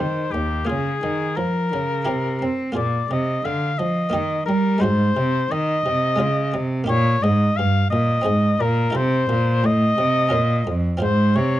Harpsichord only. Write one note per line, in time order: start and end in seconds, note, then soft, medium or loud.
0.00 0.31 D#3 soft
0.00 0.66 C4 soft
0.00 0.66 G4 soft
0.34 0.66 D#2 medium
0.65 2.01 A#3 soft
0.65 2.02 F4 soft
0.70 1.01 C#3 soft
1.03 1.35 D#3 medium
1.37 1.69 F3 medium
1.73 2.04 C#3 medium
2.05 2.38 C3 medium
2.05 2.73 E4 soft
2.05 2.73 G4 soft
2.42 2.73 C4 medium
2.72 4.08 A#3 medium
2.72 4.09 F4 soft
2.72 4.09 G#4 soft
2.77 3.08 A#2 medium
3.11 3.42 C3 medium
3.45 3.76 D3 medium
3.79 4.11 F3 medium
4.10 4.79 A#3 medium
4.10 4.79 D#4 soft
4.10 4.80 G4 soft
4.14 4.45 D#3 medium
4.49 4.80 G3 medium
4.78 6.14 G#3 medium
4.78 6.15 D#4 medium
4.78 6.16 F#4 medium
4.83 5.14 G#2 medium
5.17 5.48 C3 medium
5.52 5.83 D#3 medium
5.86 6.17 C3 medium
6.16 6.51 G#3 medium
6.16 6.85 C#4 medium
6.16 6.86 F4 medium
6.20 6.51 C#3 medium
6.54 6.85 C3 medium
6.84 8.20 A#3 medium
6.84 8.21 D#4 medium
6.84 8.22 G4 medium
6.89 7.20 A#2 medium
7.24 7.55 G#2 medium
7.59 7.90 G2 medium
7.93 8.23 A#2 medium
8.22 8.91 C4 medium
8.22 8.89 D#4 medium
8.22 8.92 G#4 medium
8.26 8.57 G#2 medium
8.61 8.92 A#2 medium
8.90 10.27 D#4 medium
8.90 10.27 F4 medium
8.90 10.28 A4 medium
8.95 9.26 C3 medium
9.29 9.60 A#2 medium
9.64 9.95 A2 medium
9.98 10.29 C3 medium
10.29 10.64 A#2 medium
10.29 10.98 C#4 medium
10.29 10.97 F4 medium
10.29 10.99 A#4 medium
10.67 10.98 F2 medium
10.97 11.60 C4 medium
10.97 11.60 F4 medium
10.97 11.60 C5 medium
11.02 11.33 G#2 medium
11.36 11.60 C3 medium